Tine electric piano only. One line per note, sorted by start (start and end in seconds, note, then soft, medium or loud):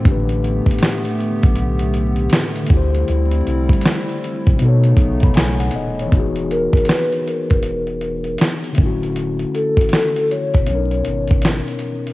0.00 2.63 A2 medium
0.00 2.65 A3 medium
0.05 2.67 D4 medium
0.05 2.68 G4 medium
0.11 2.70 B4 medium
2.63 4.53 D3 medium
2.63 4.55 A3 medium
2.70 4.56 E4 medium
2.70 4.58 G4 medium
2.77 4.60 C5 medium
4.55 6.07 B2 medium
4.55 6.08 B3 medium
4.62 6.10 D#4 medium
4.62 6.12 A4 medium
4.68 5.02 C#5 medium
5.24 5.36 B5 medium
5.36 5.60 G#5 medium
5.60 5.73 F#5 medium
5.75 5.98 D#5 medium
6.01 6.36 C#5 medium
6.06 8.71 E3 medium
6.06 8.73 B3 medium
6.13 8.74 D#4 medium
6.13 8.76 F#4 medium
6.19 8.78 G#4 medium
8.73 10.61 D3 medium
8.73 10.63 A3 medium
8.79 10.65 C#4 medium
8.79 10.67 E4 medium
8.86 10.68 F#4 medium
10.61 12.13 B2 medium
10.61 12.13 B3 medium
10.67 12.13 C#4 medium
10.67 10.78 D4 soft
10.75 12.13 D#4 medium
10.75 12.13 A#4 medium